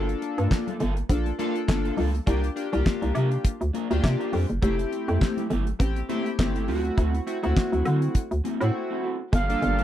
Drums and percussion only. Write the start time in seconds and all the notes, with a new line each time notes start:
0.09 closed hi-hat, muted conga
0.22 closed hi-hat
0.38 closed hi-hat, high conga
0.51 kick, snare, clap
0.67 closed hi-hat, low conga
0.80 closed hi-hat, low conga
0.97 closed hi-hat
1.09 kick, closed hi-hat
1.26 closed hi-hat, muted conga
1.39 closed hi-hat, high conga
1.56 closed hi-hat
1.68 kick, snare, clap, muted conga, high conga
1.85 closed hi-hat
1.97 open hi-hat, low conga
2.14 closed hi-hat
2.27 kick, closed hi-hat
2.44 closed hi-hat
2.57 closed hi-hat
2.73 closed hi-hat, high conga
2.86 kick, snare, clap, muted conga, high conga
3.02 closed hi-hat, low conga
3.15 closed hi-hat, low conga
3.31 closed hi-hat
3.45 kick, closed hi-hat, muted conga
3.61 closed hi-hat, muted conga
3.74 closed hi-hat, high conga
3.91 closed hi-hat
4.04 kick, snare, clap, muted conga, high conga
4.21 closed hi-hat
4.33 open hi-hat, low conga
4.50 closed hi-hat
4.62 kick, closed hi-hat
4.79 closed hi-hat
4.92 closed hi-hat
5.08 closed hi-hat, high conga
5.21 kick, snare, clap, high conga
5.37 closed hi-hat, muted conga, low conga
5.50 closed hi-hat, low conga
5.67 closed hi-hat
5.80 kick, closed hi-hat, muted conga
5.96 closed hi-hat, muted conga
6.09 closed hi-hat, high conga
6.26 closed hi-hat
6.39 kick, snare, clap, muted conga, high conga
6.56 closed hi-hat
6.67 open hi-hat, low conga
6.85 closed hi-hat
6.98 kick, closed hi-hat
7.14 closed hi-hat, muted conga
7.27 closed hi-hat
7.43 closed hi-hat, high conga
7.56 kick, snare, clap, muted conga, high conga
7.72 closed hi-hat, low conga
7.85 closed hi-hat, low conga
8.02 closed hi-hat
8.15 kick, closed hi-hat, muted conga
8.31 closed hi-hat, muted conga
8.45 closed hi-hat, high conga
8.61 closed hi-hat
9.33 kick, closed hi-hat, muted conga
9.50 closed hi-hat
9.62 closed hi-hat
9.79 closed hi-hat